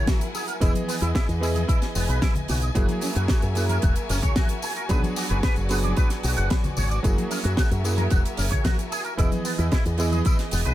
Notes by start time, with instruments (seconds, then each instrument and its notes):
Already playing: electric grand piano F#3 A#3 E4 G#4, string section E4 A#4 F#5 G#5
0.06 clean electric guitar F#4, kick, snare, closed hi-hat, tambourine, high conga
0.21 closed hi-hat, tambourine
0.35 clean electric guitar G#4, open hi-hat, tambourine
0.48 clean electric guitar A#4, closed hi-hat, tambourine
0.60 fingered electric bass E1, electric grand piano E3 B3 G#4 D#5, string section E3 B4 D#5, clean electric guitar E4, kick, closed hi-hat, tambourine
0.74 closed hi-hat, tambourine, high conga
0.88 clean electric guitar B3, open hi-hat, tambourine
1.01 fingered electric bass E2, clean electric guitar E4, closed hi-hat, tambourine
1.15 clean electric guitar E4, kick, snare, closed hi-hat, tambourine
1.28 fingered electric bass E2, closed hi-hat, tambourine
1.40 electric grand piano E3 B3 G#4 D#5, clean electric guitar E4, open hi-hat, tambourine
1.55 clean electric guitar G#4, closed hi-hat, tambourine, high conga
1.68 clean electric guitar E4, kick, closed hi-hat, tambourine
1.82 snare, closed hi-hat, tambourine
1.95 fingered electric bass E1, clean electric guitar B3, open hi-hat, tambourine
2.09 fingered electric bass B1, clean electric guitar B4, closed hi-hat, tambourine
2.22 clean electric guitar E4, kick, snare, closed hi-hat, tambourine, high conga
2.35 closed hi-hat, tambourine, low conga
2.48 fingered electric bass B1, clean electric guitar F#4, open hi-hat, tambourine, low conga
2.62 clean electric guitar G#4, closed hi-hat, tambourine
2.75 fingered electric bass F#1, electric grand piano F#3 A#3 E4 G#4, clean electric guitar F#4, string section F#4 A#4 E5, kick, closed hi-hat, tambourine
2.89 closed hi-hat, tambourine, high conga
3.01 clean electric guitar C#4, open hi-hat, tambourine
3.16 fingered electric bass F#2, clean electric guitar F#4, closed hi-hat, tambourine
3.28 clean electric guitar F#4, kick, snare, closed hi-hat, tambourine
3.42 fingered electric bass F#2, closed hi-hat, tambourine
3.55 electric grand piano F#3 A#3 E4 G#4, clean electric guitar F#4, open hi-hat, tambourine
3.69 clean electric guitar A#4, closed hi-hat, tambourine, high conga
3.82 fingered electric bass E1, clean electric guitar F#4, kick, closed hi-hat, tambourine
3.96 closed hi-hat, tambourine
4.09 fingered electric bass F#1, clean electric guitar C#4, open hi-hat, tambourine
4.22 clean electric guitar C#5, kick, closed hi-hat, tambourine, low conga
4.36 clean electric guitar F#4, kick, snare, closed hi-hat, tambourine, high conga
4.49 closed hi-hat, tambourine
4.62 clean electric guitar G#4, open hi-hat, tambourine
4.76 clean electric guitar A#4, closed hi-hat, tambourine
4.89 fingered electric bass B1, electric grand piano F#3 B3 D4 G#4, string section B4 D5, clean electric guitar B4, kick, closed hi-hat, tambourine
5.03 closed hi-hat, tambourine, high conga
5.16 clean electric guitar F#4, open hi-hat, tambourine
5.29 fingered electric bass F#1, clean electric guitar B4, closed hi-hat, tambourine
5.43 clean electric guitar B4, kick, snare, closed hi-hat, tambourine
5.56 fingered electric bass F#1, closed hi-hat, tambourine
5.69 electric grand piano F#3 B3 D4 G#4, clean electric guitar B4, open hi-hat, tambourine
5.83 clean electric guitar D5, closed hi-hat, tambourine, high conga
5.97 clean electric guitar B4, kick, closed hi-hat, tambourine
6.10 snare, closed hi-hat, tambourine
6.23 fingered electric bass B1, clean electric guitar F#4, open hi-hat, tambourine
6.37 fingered electric bass F#1, clean electric guitar F#5, closed hi-hat, tambourine
6.50 clean electric guitar B4, kick, snare, closed hi-hat, tambourine, high conga
6.64 closed hi-hat, tambourine, low conga
6.76 fingered electric bass G#1, clean electric guitar C#5, open hi-hat, tambourine, low conga
6.90 clean electric guitar D5, closed hi-hat, tambourine
7.03 fingered electric bass F#1, electric grand piano F#3 A#3 E4 G#4, clean electric guitar F#4, string section A#4 E5, kick, closed hi-hat, tambourine
7.18 closed hi-hat, tambourine, high conga
7.30 clean electric guitar C#4, open hi-hat, tambourine
7.44 fingered electric bass F#2, clean electric guitar F#4, closed hi-hat, tambourine
7.57 clean electric guitar F#4, kick, snare, closed hi-hat, tambourine
7.71 fingered electric bass F#2, closed hi-hat, tambourine
7.83 electric grand piano F#3 A#3 E4 G#4, clean electric guitar F#4, open hi-hat, tambourine
7.97 clean electric guitar A#4, closed hi-hat, tambourine, high conga
8.10 fingered electric bass E1, clean electric guitar F#4, kick, closed hi-hat, tambourine
8.25 closed hi-hat, tambourine
8.37 fingered electric bass F#1, clean electric guitar C#4, open hi-hat, tambourine
8.51 clean electric guitar C#5, kick, closed hi-hat, tambourine, low conga
8.64 clean electric guitar F#4, kick, snare, closed hi-hat, tambourine, high conga
8.79 closed hi-hat, tambourine
8.91 clean electric guitar G#4, open hi-hat, tambourine
9.04 clean electric guitar A#4, closed hi-hat, tambourine
9.17 fingered electric bass E1, electric grand piano E3 B3 G#4 D#5, string section E3 B4 D#5, clean electric guitar E4, kick, closed hi-hat, tambourine
9.31 closed hi-hat, tambourine, high conga
9.44 clean electric guitar B3, open hi-hat, tambourine
9.58 fingered electric bass E2, clean electric guitar E4, closed hi-hat, tambourine
9.72 clean electric guitar E4, kick, snare, closed hi-hat, tambourine
9.86 fingered electric bass E2, closed hi-hat, tambourine
9.98 electric grand piano E3 B3 G#4 D#5, clean electric guitar E4, open hi-hat, tambourine
10.12 clean electric guitar G#4, closed hi-hat, tambourine, high conga
10.25 clean electric guitar E4, kick, closed hi-hat, tambourine
10.39 snare, closed hi-hat, tambourine
10.51 fingered electric bass E1, clean electric guitar B3, open hi-hat, tambourine
10.65 fingered electric bass B1, clean electric guitar B4, closed hi-hat, tambourine